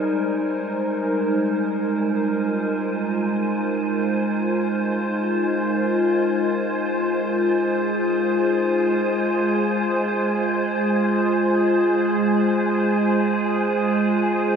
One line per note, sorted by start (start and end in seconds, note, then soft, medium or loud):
0.00 2.13 G3 medium
0.00 14.56 G#3 medium
0.00 8.12 D#4 medium
0.00 9.02 A#4 medium
0.00 14.56 C5 medium
0.00 6.79 G#5 medium
1.89 14.56 F4 medium
6.80 14.56 G#5 medium
7.09 14.56 G#4 medium